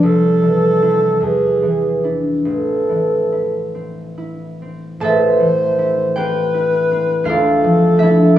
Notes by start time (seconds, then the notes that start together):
0.03 C2 A4
0.42 E3
0.82 C4 E4
1.20 E2 G#4
1.62 E3
2.04 D4 E4
2.45 A1 A4
2.89 E3
3.32 E4
3.75 C4
4.18 E4
4.62 C4
5.00 A1 A4 C5 A5
5.04 E5
5.39 E3
5.79 E4
6.16 C4 G4 B4 G5
6.54 E4
6.91 C4
7.24 D2 F4 A4 F5
7.30 D5
7.64 F3
7.97 A3 D4 E5
8.03 E4